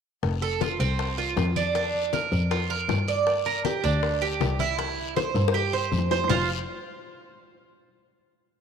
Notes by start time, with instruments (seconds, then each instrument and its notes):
0.23 double bass F1, high bongo, high conga, long guiro
0.42 cuban tres A4, high bongo, high conga
0.61 cuban tres F4, high bongo, high conga, short guiro
0.80 double bass C2, cuban tres C4, high bongo, high conga, short guiro
0.99 high bongo, high conga, long guiro
1.18 cuban tres F4, high bongo, high conga
1.37 double bass F2, high bongo, low bongo, high conga, short guiro
1.56 cuban tres D4, high conga, short guiro
1.75 cuban tres D4, high bongo, high conga, long guiro
1.94 high conga
2.13 cuban tres A#4, high bongo, high conga, short guiro
2.32 double bass F2, high bongo, high conga, short guiro
2.51 cuban tres F4, high bongo, high conga, long guiro
2.70 cuban tres A#4, high bongo, high conga
2.88 double bass G2, high bongo, low bongo, high conga, short guiro
3.08 cuban tres D5, high bongo, high conga, short guiro
3.27 high bongo, high conga, long guiro
3.46 cuban tres A#4, high bongo, high conga
3.65 cuban tres G4, high bongo, high conga, short guiro
3.84 double bass D2, cuban tres D4, high bongo, high conga, short guiro
4.03 high bongo, high conga, long guiro
4.22 cuban tres G4, high bongo, high conga
4.40 double bass C2, high bongo, low bongo, high conga, short guiro
4.59 cuban tres E4, high conga, short guiro
4.79 cuban tres E4, high bongo, high conga, long guiro
4.98 high conga
5.16 cuban tres C5, high bongo, high conga, short guiro
5.35 double bass G2, high bongo, short guiro
5.48 high bongo
5.54 cuban tres G4, high conga, long guiro
5.73 cuban tres C5, high conga
5.92 double bass F2, high conga, short guiro
5.98 low bongo
6.11 cuban tres C5, low bongo, high conga, short guiro
6.24 low bongo
6.29 double bass F1, cuban tres F4 C5 F5, low bongo, low conga, long guiro